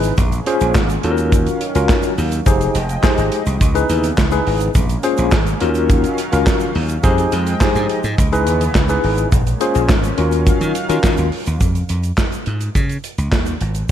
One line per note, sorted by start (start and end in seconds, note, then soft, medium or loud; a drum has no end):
0.00 0.11 G#1 medium
0.00 0.17 C#3 medium
0.00 0.17 E3 medium
0.00 0.17 B3 medium
0.00 0.13 D#4 medium
0.00 0.13 E4 medium
0.00 0.13 G#4 medium
0.00 0.13 B4 loud
0.00 0.17 D#5 medium
0.00 closed hi-hat medium
0.00 shaker medium
0.18 0.39 A#1 loud
0.18 1.03 G#3 medium
0.18 1.03 A#3 medium
0.18 1.02 C#4 medium
0.18 kick loud
0.18 closed hi-hat medium
0.18 shaker medium
0.32 closed hi-hat medium
0.32 shaker medium
0.46 0.77 C#4 loud
0.46 0.77 F4 medium
0.46 0.77 G#4 medium
0.46 0.77 C5 loud
0.46 closed hi-hat medium
0.61 0.72 A#1 loud
0.61 closed hi-hat medium
0.61 shaker medium
0.74 0.96 G#1 loud
0.74 kick loud
0.74 snare loud
0.74 clap loud
0.74 shaker medium
0.90 closed hi-hat medium
0.90 shaker soft
1.03 1.46 D#2 medium
1.03 2.45 D#3 medium
1.03 2.45 F#3 medium
1.03 2.45 C#4 medium
1.03 1.61 C#4 medium
1.03 1.61 F4 medium
1.03 1.61 F#4 medium
1.03 1.11 A4 medium
1.03 2.45 F5 medium
1.03 closed hi-hat medium
1.11 1.65 A#4 loud
1.17 closed hi-hat medium
1.17 shaker soft
1.32 kick loud
1.32 closed hi-hat medium
1.32 shaker medium
1.46 closed hi-hat medium
1.46 shaker soft
1.61 closed hi-hat medium
1.75 1.86 C#2 medium
1.75 2.13 C#4 loud
1.75 2.13 F4 medium
1.75 2.13 F#4 medium
1.75 2.13 A#4 loud
1.75 closed hi-hat medium
1.75 shaker soft
1.89 kick loud
1.89 snare loud
1.89 clap loud
1.89 shaker medium
2.03 closed hi-hat medium
2.03 shaker soft
2.18 2.39 D#2 loud
2.18 open hi-hat medium
2.18 shaker medium
2.32 closed hi-hat medium
2.32 shaker medium
2.46 2.68 F1 loud
2.46 3.60 F3 medium
2.46 3.60 G#3 medium
2.46 2.76 D#4 loud
2.46 2.76 G4 medium
2.46 2.77 G#4 medium
2.46 2.77 C5 loud
2.46 4.73 D#5 medium
2.46 3.60 G5 medium
2.46 kick loud
2.46 closed hi-hat medium
2.46 shaker medium
2.61 closed hi-hat medium
2.61 shaker medium
2.75 2.96 F1 loud
2.75 closed hi-hat medium
2.75 shaker soft
2.89 closed hi-hat soft
2.89 shaker soft
3.03 3.41 D#4 medium
3.03 3.41 G4 medium
3.03 3.41 G#4 medium
3.03 3.41 C5 loud
3.03 kick loud
3.03 snare loud
3.03 clap loud
3.03 shaker medium
3.18 3.29 G#1 medium
3.18 closed hi-hat medium
3.18 shaker soft
3.32 closed hi-hat medium
3.46 3.57 C2 medium
3.46 closed hi-hat medium
3.46 shaker soft
3.60 3.82 C#2 loud
3.60 4.74 C#3 medium
3.60 4.74 E3 medium
3.60 4.74 B3 medium
3.60 kick loud
3.60 closed hi-hat medium
3.60 shaker medium
3.74 4.05 D#4 medium
3.74 4.05 E4 medium
3.74 4.05 G#4 medium
3.74 4.05 B4 loud
3.74 closed hi-hat medium
3.74 shaker soft
3.89 4.11 D#2 medium
3.89 closed hi-hat medium
3.89 shaker medium
4.04 closed hi-hat medium
4.04 shaker soft
4.18 4.39 C#2 loud
4.18 kick loud
4.18 snare loud
4.18 clap loud
4.18 shaker medium
4.31 4.70 D#4 medium
4.31 4.70 E4 medium
4.31 4.70 G#4 medium
4.31 4.70 B4 medium
4.31 closed hi-hat medium
4.31 shaker soft
4.47 4.68 G#1 medium
4.47 open hi-hat medium
4.60 closed hi-hat medium
4.60 shaker medium
4.74 4.96 A#1 loud
4.74 5.60 G#3 medium
4.74 5.60 A#3 medium
4.74 7.01 C#4 medium
4.74 kick loud
4.74 closed hi-hat medium
4.74 shaker medium
4.89 closed hi-hat medium
4.89 shaker medium
5.03 5.33 C#4 loud
5.03 5.34 F4 medium
5.03 5.34 G#4 medium
5.03 5.34 C5 loud
5.03 closed hi-hat medium
5.03 shaker soft
5.17 5.29 A#1 loud
5.17 closed hi-hat medium
5.17 shaker medium
5.31 5.53 G#1 loud
5.31 kick loud
5.31 snare loud
5.31 clap loud
5.31 shaker medium
5.47 closed hi-hat medium
5.47 shaker soft
5.60 6.04 D#2 loud
5.60 7.02 D#3 medium
5.60 7.02 F#3 medium
5.60 6.18 C#4 medium
5.60 6.18 F4 medium
5.60 6.18 F#4 medium
5.60 6.18 A#4 loud
5.60 7.02 F5 medium
5.60 closed hi-hat medium
5.75 closed hi-hat medium
5.75 shaker soft
5.90 kick loud
5.90 closed hi-hat medium
5.90 shaker medium
6.04 closed hi-hat medium
6.04 shaker soft
6.18 closed hi-hat medium
6.18 shaker medium
6.32 6.43 C#2 loud
6.32 6.70 C#4 medium
6.32 6.70 F4 medium
6.32 6.70 F#4 medium
6.32 6.70 A#4 loud
6.32 closed hi-hat medium
6.32 shaker soft
6.46 kick loud
6.46 snare loud
6.46 clap loud
6.46 shaker medium
6.60 closed hi-hat medium
6.60 shaker soft
6.75 6.97 D#2 loud
6.75 open hi-hat medium
6.89 closed hi-hat medium
6.89 shaker medium
7.03 7.25 F2 loud
7.03 8.17 F3 medium
7.03 8.17 G#3 medium
7.03 7.34 D#4 loud
7.03 7.34 G4 medium
7.03 7.34 G#4 medium
7.03 7.34 C5 loud
7.03 9.30 D#5 medium
7.03 8.17 G5 medium
7.03 kick loud
7.03 closed hi-hat loud
7.03 shaker medium
7.18 closed hi-hat medium
7.18 shaker medium
7.32 7.54 F2 loud
7.32 closed hi-hat medium
7.32 shaker soft
7.47 closed hi-hat medium
7.47 shaker medium
7.60 7.98 D#4 medium
7.60 7.98 G4 medium
7.60 7.98 G#4 medium
7.60 7.99 C5 loud
7.60 kick loud
7.60 snare loud
7.60 clap loud
7.60 shaker medium
7.75 7.86 G2 loud
7.75 closed hi-hat medium
7.75 shaker soft
7.89 closed hi-hat medium
8.04 8.14 G#2 medium
8.04 closed hi-hat medium
8.04 shaker soft
8.18 8.47 C#2 loud
8.18 9.31 C#3 medium
8.18 9.31 E3 medium
8.18 9.31 B3 medium
8.18 kick loud
8.18 closed hi-hat medium
8.18 shaker medium
8.32 8.62 D#4 medium
8.32 8.62 E4 medium
8.32 8.62 G#4 medium
8.32 8.63 B4 loud
8.32 closed hi-hat medium
8.32 shaker soft
8.47 8.68 D#2 loud
8.47 closed hi-hat medium
8.47 shaker medium
8.61 closed hi-hat medium
8.61 shaker soft
8.75 8.96 C#2 loud
8.75 kick loud
8.75 snare loud
8.75 clap medium
8.75 shaker medium
8.89 9.27 D#4 medium
8.89 9.27 E4 medium
8.89 9.27 G#4 medium
8.89 9.27 B4 loud
8.89 closed hi-hat medium
8.89 shaker soft
9.04 9.25 G#1 medium
9.04 open hi-hat medium
9.18 closed hi-hat medium
9.18 shaker medium
9.32 9.54 A#1 loud
9.32 10.17 G#3 medium
9.32 10.17 A#3 medium
9.32 11.59 C#4 medium
9.32 kick loud
9.32 closed hi-hat medium
9.32 shaker medium
9.47 closed hi-hat medium
9.47 shaker medium
9.60 9.91 C#4 medium
9.60 9.91 F4 medium
9.60 9.91 G#4 medium
9.60 9.91 C5 loud
9.60 closed hi-hat medium
9.60 shaker soft
9.75 9.89 A#1 medium
9.75 closed hi-hat soft
9.75 shaker medium
9.89 10.11 G#1 loud
9.89 kick loud
9.89 snare loud
9.89 clap loud
9.89 shaker medium
10.04 closed hi-hat medium
10.04 shaker medium
10.17 10.50 D#2 medium
10.17 11.60 D#3 medium
10.17 11.60 F#3 medium
10.17 10.75 C#4 medium
10.17 10.75 F4 medium
10.17 10.75 F#4 medium
10.17 10.75 A#4 medium
10.17 11.60 F5 medium
10.17 closed hi-hat medium
10.32 closed hi-hat medium
10.32 shaker soft
10.47 kick loud
10.47 closed hi-hat medium
10.47 shaker medium
10.61 10.72 D#3 loud
10.61 closed hi-hat medium
10.61 shaker soft
10.75 closed hi-hat medium
10.75 shaker medium
10.89 11.00 D#3 medium
10.89 11.27 C#4 medium
10.89 11.27 F4 medium
10.89 11.27 F#4 medium
10.89 11.27 A#4 loud
10.89 closed hi-hat medium
10.89 shaker soft
11.04 11.14 D#3 loud
11.04 kick loud
11.04 snare loud
11.04 clap loud
11.04 shaker medium
11.17 11.29 D#2 medium
11.17 closed hi-hat medium
11.17 shaker soft
11.32 open hi-hat medium
11.46 11.58 D#2 medium
11.46 closed hi-hat medium
11.46 shaker medium
11.61 11.82 F2 loud
11.61 kick loud
11.61 closed hi-hat medium
11.61 shaker medium
11.75 closed hi-hat soft
11.75 shaker soft
11.89 12.11 F2 medium
11.89 closed hi-hat medium
11.89 shaker soft
12.03 closed hi-hat soft
12.03 shaker soft
12.18 kick loud
12.18 snare loud
12.18 clap medium
12.18 shaker medium
12.32 closed hi-hat soft
12.32 shaker soft
12.46 12.68 G#2 medium
12.46 closed hi-hat medium
12.61 closed hi-hat medium
12.61 shaker soft
12.75 12.96 C#3 medium
12.75 kick medium
12.75 closed hi-hat medium
12.75 shaker medium
12.89 closed hi-hat soft
12.89 shaker soft
13.04 closed hi-hat medium
13.04 shaker soft
13.18 13.29 C#2 medium
13.18 closed hi-hat medium
13.18 shaker soft
13.32 13.54 D#2 medium
13.32 kick loud
13.32 snare loud
13.32 clap medium
13.32 shaker medium
13.46 closed hi-hat soft
13.46 shaker soft
13.61 13.82 G#1 medium
13.61 closed hi-hat medium
13.75 closed hi-hat medium
13.75 shaker soft